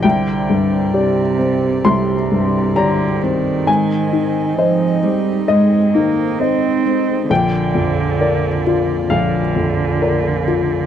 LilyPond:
<<
  \new Staff \with { instrumentName = "Upright piano" } { \time 4/4 \key c \minor \tempo 4 = 66 << { g''2 c'''4 bes''4 | aes''2 ees''2 | g''2 f''2 | } \\ { c,8 g,8 <g' d''>8 c'8 c,8 g,8 <g' d''>8 c'8 | aes,8 ees8 <c'' ees''>8 c'8 aes,8 ees8 <c'' ees''>8 c'8 | bes,,8 f,8 <bes' d''>8 f'8 bes,,8 f,8 <bes' d''>8 f'8 | } >> }
  \new Staff \with { instrumentName = "Harmonium" } { \time 4/4 \key c \minor <c' g' d''>1 | <c' ees' ees''>1 | <bes f' d''>1 | }
  \new Staff \with { instrumentName = "Cello" } { \clef bass \time 4/4 \key c \minor d4 c4 c4 d8 ees8~ | ees4 f8 g8 aes8 bes8 c'4 | d2 d2 | }
>>